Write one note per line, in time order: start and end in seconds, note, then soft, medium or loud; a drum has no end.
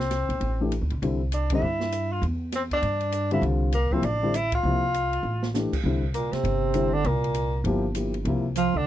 0.00 0.25 C2 medium
0.00 0.68 C4 medium
0.11 snare soft
0.11 hi-hat pedal medium
0.11 ride medium
0.29 0.40 B1 medium
0.29 kick medium
0.29 ride soft
0.41 0.78 A1 medium
0.41 ride soft
0.61 0.71 E3 medium
0.61 0.71 A3 medium
0.61 0.71 D4 medium
0.61 0.71 G4 medium
0.72 hi-hat pedal soft
0.72 ride medium
0.81 0.91 D2 medium
0.90 1.01 C#2 medium
0.90 ride soft
1.02 1.59 C2 medium
1.02 1.19 D3 medium
1.02 1.19 G3 medium
1.02 1.19 C4 medium
1.02 1.19 E4 medium
1.02 ride medium
1.32 1.50 D4 medium
1.32 hi-hat pedal medium
1.32 ride medium
1.50 1.62 D3 medium
1.50 1.62 G3 medium
1.50 1.62 C4 medium
1.50 1.62 D4 medium
1.50 kick medium
1.50 ride medium
1.54 2.14 E4 medium
1.62 2.19 G2 medium
1.80 snare medium
1.92 hi-hat pedal medium
1.92 ride medium
2.12 2.23 F4 medium
2.22 2.79 E2 medium
2.22 ride soft
2.52 2.63 C4 medium
2.52 snare soft
2.52 hi-hat pedal medium
2.52 ride medium
2.71 3.29 D4 medium
2.71 kick medium
2.71 ride soft
2.82 3.40 G2 medium
2.82 ride medium
3.01 ride soft
3.12 hi-hat pedal medium
3.12 ride medium
3.31 3.71 D3 medium
3.31 3.71 G3 medium
3.31 3.71 C4 medium
3.31 3.43 E4 medium
3.31 3.72 F4 medium
3.31 ride soft
3.42 3.88 C2 medium
3.42 ride soft
3.72 3.94 A#3 medium
3.72 hi-hat pedal medium
3.72 ride medium
3.91 4.03 C3 medium
3.91 4.03 F3 medium
3.91 4.03 A#3 medium
3.91 4.06 C4 medium
3.91 4.03 E4 medium
3.91 muted upright bass stroke soft
3.91 kick medium
4.02 4.60 A1 medium
4.02 4.37 D4 medium
4.02 ride medium
4.23 4.33 D3 medium
4.23 4.33 G3 medium
4.23 4.34 C4 medium
4.23 4.34 E4 medium
4.34 4.53 E4 loud
4.34 hi-hat pedal medium
4.34 ride medium
4.52 5.52 F4 loud
4.52 kick medium
4.52 ride medium
4.63 5.21 C2 medium
4.63 4.81 C3 medium
4.63 4.81 F3 medium
4.63 4.81 A#3 medium
4.63 4.82 E4 medium
4.94 hi-hat pedal medium
4.94 ride medium
5.13 ride soft
5.23 5.69 A1 medium
5.43 snare medium
5.54 5.71 E3 medium
5.54 5.72 A3 medium
5.54 5.72 D4 medium
5.54 5.72 G4 medium
5.54 snare medium
5.54 hi-hat pedal medium
5.72 muted upright bass stroke soft
5.72 kick medium
5.72 crash medium
5.84 6.29 C2 medium
5.84 6.02 D3 medium
5.84 6.02 G3 medium
5.84 6.02 C4 medium
5.84 6.02 E4 medium
6.03 kick medium
6.14 6.34 A#2 medium
6.14 6.34 A#3 medium
6.14 hi-hat pedal medium
6.14 ride medium
6.32 6.95 C3 medium
6.32 6.95 C4 medium
6.32 muted upright bass stroke soft
6.32 snare soft
6.32 ride soft
6.44 7.02 G1 medium
6.44 ride medium
6.74 6.92 D3 medium
6.74 6.92 G3 soft
6.74 6.92 C4 medium
6.74 6.92 E4 medium
6.74 hi-hat pedal medium
6.74 ride medium
6.93 7.07 D3 medium
6.93 7.08 D4 medium
7.04 7.62 C2 medium
7.04 7.66 A#2 medium
7.04 7.66 A#3 medium
7.04 ride medium
7.24 ride soft
7.34 hi-hat pedal medium
7.34 ride medium
7.64 8.22 G1 medium
7.64 7.83 F3 medium
7.64 7.83 A#3 medium
7.64 7.83 E4 medium
7.64 7.83 G4 medium
7.64 ride medium
7.95 8.13 F3 soft
7.95 8.13 A#3 soft
7.95 8.13 E4 soft
7.95 8.13 G4 soft
7.95 hi-hat pedal soft
7.95 ride medium
8.14 ride soft
8.25 8.71 C2 medium
8.25 8.43 C3 medium
8.25 8.44 F3 medium
8.25 8.44 A#3 medium
8.25 8.44 E4 medium
8.25 ride medium
8.56 8.77 F3 medium
8.56 8.79 F4 medium
8.56 hi-hat pedal medium
8.56 ride medium
8.74 8.85 C#2 medium
8.74 8.87 D3 medium
8.74 8.87 D4 medium